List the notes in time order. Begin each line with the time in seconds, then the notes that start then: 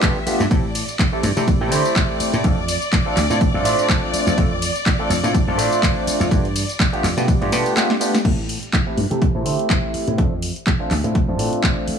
Already playing: E5
0.02 A3 B3 D4 F4 G4, kick, clap, closed hi-hat, ride, tambourine
0.26 A3 B3 D4 F4 G4, muted slap bass stroke, open hi-hat, ride, tambourine
0.40 G2, closed hi-hat, tambourine
0.50 A2 A3 C4 E4 G4 A4 D5, kick, closed hi-hat, ride, tambourine
0.75 open hi-hat, ride, tambourine
0.89 closed hi-hat, tambourine
0.99 kick, clap, closed hi-hat, ride, tambourine
1.12 A3 C4 E4 G4 A4
1.23 G2, open hi-hat, ride, tambourine
1.36 C3 A3 C4 E4 G4 A4, closed hi-hat, tambourine
1.48 kick, closed hi-hat, ride, tambourine
1.61 A2 A3 C4 E4 G4 A4
1.71 D3 A3 C4 E4 G4 C5, open hi-hat, ride, tambourine
1.85 closed hi-hat, tambourine
1.96 kick, clap, closed hi-hat, ride, tambourine
2.20 muted slap bass stroke, open hi-hat, ride, tambourine
2.34 A2, closed hi-hat, tambourine
2.44 F2 A3 C4 D4 F4 A4, kick, closed hi-hat, ride, tambourine
2.68 open hi-hat, ride, tambourine
2.82 closed hi-hat, tambourine
2.93 kick, clap, closed hi-hat, ride, tambourine
3.06 A3 C4 D4 F4 A4
3.17 D2, clap, open hi-hat, ride, tambourine
3.30 A2 A3 C4 D4 F4 A4, closed hi-hat, tambourine
3.41 kick, closed hi-hat, ride, tambourine
3.54 F2 A3 C4 D4 F4 A4
3.64 A2 A3 C4 D4 F4 D5, open hi-hat, ride, tambourine
3.79 closed hi-hat, tambourine
3.89 kick, clap, closed hi-hat, ride, tambourine
4.13 muted slap bass stroke, open hi-hat, ride, tambourine
4.27 F2, closed hi-hat, tambourine
4.37 F2 A3 C4 D4 F4 A4, kick, closed hi-hat, ride, tambourine
4.62 open hi-hat, ride, tambourine
4.76 closed hi-hat, tambourine
4.86 kick, clap, closed hi-hat, ride, tambourine
4.99 A3 C4 D4 F4 A4
5.10 F2, open hi-hat, ride, tambourine
5.23 A2 A3 C4 D4 F4 A4, closed hi-hat, tambourine
5.34 kick, closed hi-hat, ride, tambourine
5.47 F2 A3 C4 D4 F4 A4
5.57 A2 A3 C4 D4 F4 C5, open hi-hat, ride, tambourine
5.72 closed hi-hat, tambourine
5.83 kick, clap, closed hi-hat, ride, tambourine
6.07 muted slap bass stroke, open hi-hat, ride, tambourine
6.20 F2, closed hi-hat, tambourine
6.31 G2 A3 B3 D4 F4 G4, kick, closed hi-hat, ride, tambourine
6.45 closed hi-hat
6.56 open hi-hat, ride, tambourine
6.69 closed hi-hat, tambourine
6.80 kick, clap, closed hi-hat, ride, tambourine
6.93 A3 B3 D4 F4 G4, closed hi-hat
7.04 F2, clap, open hi-hat, ride, tambourine
7.17 B2 A3 B3 D4 F4 G4, closed hi-hat, tambourine
7.28 kick, closed hi-hat, ride, tambourine
7.41 G2 A3 B3 D4 F4 G4, closed hi-hat
7.52 B2 A3 B3 D4 F4 G4, snare, open hi-hat, ride, tambourine
7.66 closed hi-hat, tambourine
7.76 A3 B3 D4 F4 G4, snare, clap, closed hi-hat, ride, tambourine
7.90 snare
8.00 A3 B3 D4 F4 G4, open hi-hat, ride, tambourine
8.14 snare, closed hi-hat, tambourine
8.24 A2 A3 C4 E4 A4, kick, closed hi-hat, crash
8.49 open hi-hat
8.63 closed hi-hat
8.73 kick, clap, closed hi-hat
8.86 A3 C4 E4 G4 A4
8.97 G2, open hi-hat
9.10 C3 A3 C4 E4 G4 A4, closed hi-hat
9.22 kick, closed hi-hat
9.34 A2 A3 C4 E4 G4 A4
9.45 D3 A3 C4 E4 G4 C5, open hi-hat
9.59 closed hi-hat
9.70 kick, clap, closed hi-hat
9.94 muted slap bass stroke, open hi-hat
10.08 A2, closed hi-hat
10.17 F2 A3 C4 D4 F4 A4, kick, closed hi-hat
10.42 open hi-hat
10.56 closed hi-hat
10.67 kick, clap, closed hi-hat
10.79 A3 C4 D4 F4 A4
10.91 D2, clap, open hi-hat
11.04 A2 A3 C4 D4 F4 A4, closed hi-hat
11.15 kick, closed hi-hat
11.28 F2 A3 C4 D4 F4 A4
11.38 A2 A3 C4 D4 F4 D5, open hi-hat
11.53 closed hi-hat
11.63 kick, clap, closed hi-hat
11.88 muted slap bass stroke, open hi-hat